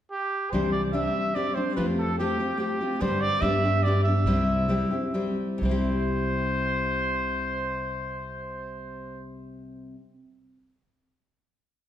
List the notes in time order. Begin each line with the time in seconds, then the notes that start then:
0.11 G4
0.51 C2 C3 E3 G3 C4 D4 G4 C5
0.72 D5
0.93 G3 C4 D4 G4 E5
1.35 G3 C4 D4 G4 D5
1.55 G3 C4 D4 G4 C5
1.76 F2 F3 A3 C4 F4 G4 B4
1.98 A4
2.19 A3 C4 F4 G4
2.39 C4 F4 G4
2.58 A3 C4 F4 G4
2.81 C4 F4 G4
3.00 G2 D3 G3 C4 D4 G4 C5
3.21 D5
3.41 G2 G3 B3 D4 G4 E5
3.65 G3 B3 D4 G4
3.83 G3 B3 D4 D5
3.87 G4
4.03 D4 G4 E5
4.08 G3 B3
4.24 C2 C3 G3 C4 E4 G4
4.69 G3 C4 E4 G4
4.91 C4 E4 G4
5.14 G3 C4 E4 G4
5.58 C2 C3
5.62 G3 C4 C5
5.69 E4 G4